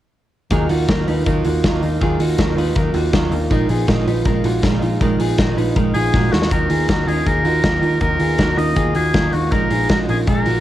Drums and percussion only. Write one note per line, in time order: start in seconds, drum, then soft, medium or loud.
0.51 kick medium
0.51 closed hi-hat medium
0.69 open hi-hat medium
0.89 kick medium
0.89 snare loud
0.89 closed hi-hat medium
1.08 open hi-hat medium
1.26 kick loud
1.26 closed hi-hat medium
1.44 open hi-hat medium
1.64 kick loud
1.64 snare loud
1.64 closed hi-hat medium
1.82 open hi-hat medium
2.01 kick medium
2.01 closed hi-hat medium
2.20 open hi-hat medium
2.38 kick loud
2.38 snare loud
2.38 closed hi-hat medium
2.58 open hi-hat medium
2.76 kick loud
2.76 closed hi-hat medium
2.94 open hi-hat medium
3.13 kick medium
3.13 snare loud
3.13 closed hi-hat medium
3.32 open hi-hat medium
3.51 kick medium
3.51 closed hi-hat medium
3.69 open hi-hat medium
3.88 kick loud
3.88 snare loud
3.88 closed hi-hat medium
4.08 open hi-hat medium
4.25 kick loud
4.25 closed hi-hat medium
4.44 open hi-hat medium
4.63 kick loud
4.63 snare medium
4.63 closed hi-hat medium
4.82 open hi-hat medium
5.01 kick medium
5.01 closed hi-hat medium
5.20 open hi-hat medium
5.38 kick loud
5.38 snare loud
5.38 closed hi-hat medium
5.58 open hi-hat medium
5.76 kick loud
5.76 closed hi-hat medium
5.94 open hi-hat medium
6.14 kick loud
6.14 snare soft
6.33 snare medium
6.42 snare medium
6.51 kick loud
6.51 closed hi-hat medium
6.70 open hi-hat medium
6.88 kick loud
6.88 snare loud
6.88 closed hi-hat medium
7.08 open hi-hat medium
7.26 kick medium
7.26 closed hi-hat medium
7.45 open hi-hat medium
7.64 kick medium
7.64 snare loud
7.64 closed hi-hat medium
7.83 open hi-hat medium
8.01 kick medium
8.01 closed hi-hat medium
8.20 open hi-hat medium
8.38 kick medium
8.38 snare medium
8.38 closed hi-hat medium
8.58 open hi-hat medium
8.76 kick medium
8.76 closed hi-hat medium
8.95 open hi-hat medium
9.14 kick loud
9.14 snare loud
9.14 closed hi-hat medium
9.33 open hi-hat medium
9.52 kick loud
9.52 closed hi-hat medium
9.71 open hi-hat medium
9.89 kick loud
9.89 snare loud
9.89 closed hi-hat medium
10.09 open hi-hat medium
10.27 kick loud
10.27 closed hi-hat medium
10.46 open hi-hat medium